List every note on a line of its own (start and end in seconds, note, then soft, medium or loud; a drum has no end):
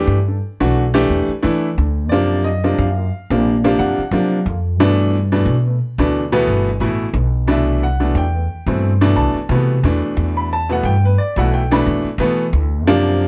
0.00 0.17 E3 medium
0.00 0.16 A3 medium
0.00 0.17 D4 medium
0.00 0.17 G4 medium
0.07 0.39 G2 medium
0.28 0.35 D4 soft
0.28 0.35 A4 soft
0.60 1.06 B1 medium
0.60 0.83 E3 medium
0.60 0.83 A3 medium
0.60 0.83 D4 medium
0.60 0.83 F#4 medium
0.94 1.29 E3 loud
0.94 1.30 A3 loud
0.94 1.30 D4 loud
0.94 1.29 G4 loud
1.09 1.27 E2 medium
1.28 muted upright bass stroke soft
1.43 1.68 E3 medium
1.43 1.75 E3 medium
1.43 1.68 A3 medium
1.43 1.68 D4 medium
1.43 1.67 E4 loud
1.78 2.12 D2 medium
1.78 1.86 D4 soft
1.78 1.86 A4 soft
2.09 2.75 F#2 medium
2.09 2.47 C3 medium
2.09 2.47 F3 medium
2.09 2.47 A#3 medium
2.09 2.47 D4 medium
2.09 2.43 D5 medium
2.44 2.77 D#5 medium
2.64 2.86 C3 medium
2.64 2.86 F3 medium
2.64 2.86 A#3 medium
2.64 2.86 D4 medium
2.78 3.09 F#2 medium
2.78 3.75 F5 medium
2.98 3.04 A#3 soft
2.98 3.04 F4 soft
3.30 3.75 A#1 medium
3.30 3.53 C3 medium
3.30 3.53 F3 medium
3.30 3.53 A#3 medium
3.30 3.53 D4 medium
3.64 3.99 C3 loud
3.64 3.99 F3 medium
3.64 3.99 A#3 medium
3.64 3.99 D4 loud
3.79 3.96 F#2 medium
3.79 4.42 F#5 medium
3.98 muted upright bass stroke soft
4.11 4.37 C3 medium
4.11 4.37 F3 medium
4.11 4.43 F#3 medium
4.11 4.37 A#3 medium
4.11 4.37 D4 medium
4.46 4.80 F2 medium
4.46 4.56 A#3 soft
4.46 4.56 F4 soft
4.80 5.43 G2 medium
4.80 5.15 B2 loud
4.80 5.16 E3 loud
4.80 5.16 A3 loud
4.80 5.16 D4 loud
5.32 5.55 B2 medium
5.32 5.55 E3 medium
5.32 5.55 A3 medium
5.32 5.55 D4 medium
5.46 5.77 B2 medium
5.67 5.74 A3 soft
5.67 5.73 B3 soft
5.98 6.44 D2 medium
5.98 6.22 B2 medium
5.98 6.22 E3 medium
5.98 6.22 A3 medium
5.98 6.22 D4 medium
6.32 6.68 B2 loud
6.32 6.68 E3 loud
6.32 6.68 A3 loud
6.32 6.68 B3 loud
6.47 6.78 G1 medium
6.80 7.11 A1 medium
6.80 7.06 B2 medium
6.80 7.06 E3 medium
6.80 7.06 A3 medium
6.80 7.06 E4 loud
7.14 7.48 B1 medium
7.14 7.24 A3 soft
7.14 7.24 B3 soft
7.47 8.12 C2 medium
7.47 7.84 B2 medium
7.47 7.84 E3 medium
7.47 7.84 A3 medium
7.47 7.84 D4 medium
7.47 7.83 E5 medium
7.83 8.15 F#5 medium
8.00 8.23 B2 medium
8.00 8.23 E3 medium
8.00 8.23 A3 medium
8.00 8.23 D4 medium
8.15 8.47 E2 medium
8.15 9.14 G5 medium
8.34 8.42 A3 soft
8.34 8.42 B3 soft
8.67 9.12 G2 medium
8.67 8.90 B2 medium
8.67 8.91 E3 medium
8.67 8.91 A3 medium
8.67 8.91 C4 medium
9.01 9.37 B2 loud
9.01 9.37 E3 medium
9.01 9.37 A3 medium
9.01 9.37 D4 loud
9.16 9.33 C2 medium
9.16 9.80 A5 medium
9.34 muted upright bass stroke soft
9.49 9.76 B2 medium
9.49 9.81 C3 loud
9.49 9.75 E3 medium
9.49 9.76 A3 medium
9.49 9.76 B3 medium
9.83 10.01 E2 medium
9.83 10.52 B2 medium
9.83 10.52 E3 medium
9.83 10.52 A3 medium
9.83 10.52 D4 medium
10.17 10.81 E2 medium
10.37 10.51 B5 medium
10.53 10.70 A5 loud
10.69 10.93 B2 medium
10.69 10.92 E3 medium
10.69 10.92 A3 medium
10.69 10.92 B3 medium
10.69 10.86 F#5 medium
10.83 11.15 G2 medium
10.83 11.03 G5 medium
11.04 11.11 A3 soft
11.04 11.11 B3 soft
11.04 11.19 B4 medium
11.18 11.36 D5 medium
11.36 11.82 B1 medium
11.36 11.60 B2 medium
11.36 11.60 E3 medium
11.36 11.60 A3 medium
11.36 11.60 E4 medium
11.36 11.53 F#5 medium
11.54 11.71 G5 medium
11.71 12.07 B2 medium
11.71 12.06 E3 medium
11.71 12.06 A3 loud
11.71 12.07 D4 loud
11.71 11.81 B5 medium
11.86 12.03 E2 medium
12.04 muted upright bass stroke soft
12.18 12.44 B2 medium
12.18 12.50 E3 loud
12.18 12.44 E3 medium
12.18 12.45 A3 medium
12.18 12.44 B3 loud
12.53 12.86 D2 medium
12.53 12.63 A3 soft
12.53 12.63 E4 soft
12.86 13.28 F#2 medium
12.86 13.23 C3 loud
12.86 13.23 F3 loud
12.86 13.23 A#3 loud
12.86 13.23 D4 loud